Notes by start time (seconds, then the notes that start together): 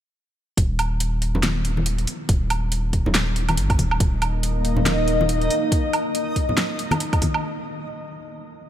0.57 D#1, kick, closed hi-hat
0.79 closed hi-hat, low woodblock
1.00 closed hi-hat
1.22 closed hi-hat
1.35 low conga
1.43 snare, clap, closed hi-hat, high conga
1.65 closed hi-hat
1.77 high conga
1.86 closed hi-hat
1.98 closed hi-hat
2.07 open hi-hat
2.29 D#1, kick, closed hi-hat
2.50 closed hi-hat, low woodblock
2.72 closed hi-hat
2.93 kick, closed hi-hat
3.06 low conga
3.15 snare, clap, closed hi-hat
3.36 closed hi-hat
3.49 closed hi-hat, high conga, low woodblock
3.57 G#1, closed hi-hat
3.70 kick, closed hi-hat, low woodblock
3.78 D#1, kick, open hi-hat, high conga
3.91 low woodblock
4.00 D#1 A#3 D#4 D#5, kick, closed hi-hat
4.22 closed hi-hat, low woodblock
4.43 closed hi-hat
4.65 closed hi-hat
4.76 low conga
4.85 snare, clap, closed hi-hat, high conga
5.08 closed hi-hat
5.21 high conga
5.29 closed hi-hat
5.42 closed hi-hat
5.50 open hi-hat
5.72 kick, closed hi-hat
5.93 closed hi-hat, low woodblock
6.15 closed hi-hat
6.36 kick, closed hi-hat
6.49 low conga
6.58 snare, clap, closed hi-hat
6.79 closed hi-hat
6.91 closed hi-hat, high conga, low woodblock
7.00 closed hi-hat
7.13 kick, closed hi-hat, low woodblock
7.22 kick, open hi-hat, high conga
7.34 low woodblock